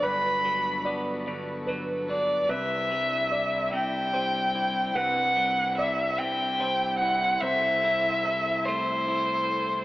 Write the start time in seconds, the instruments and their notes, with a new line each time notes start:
Already playing: clean electric guitar D3 F#3 B3 D4, string section D4 F#4 A4 B4
0.02 fingered electric bass G1, clean electric guitar G2, felt piano B4, violin B5
0.45 clean electric guitar F#3
0.85 clean electric guitar B3, felt piano D5
1.28 clean electric guitar D3
1.67 clean electric guitar F#3, felt piano B4
2.09 clean electric guitar D4, violin D5
2.49 fingered electric bass C2, string section C3 C4 E4, clean electric guitar C3, felt piano B4, violin E5
2.92 clean electric guitar G3
3.31 felt piano D5
3.73 clean electric guitar C3, violin G5
4.14 clean electric guitar G3, felt piano C5
4.55 clean electric guitar E4
4.95 fingered electric bass C2, clean electric guitar C3, felt piano B4, violin F#5
5.37 clean electric guitar G3
5.78 felt piano D5, violin E5
6.18 clean electric guitar C3, violin G5
6.60 clean electric guitar G3, felt piano C5
6.98 clean electric guitar E4, violin F#5
7.41 fingered electric bass C2, clean electric guitar C3, string section C4 A4, felt piano C5, violin E5
7.84 clean electric guitar E4
8.25 clean electric guitar A4, felt piano E5
8.65 clean electric guitar A3, violin C5
9.08 clean electric guitar E4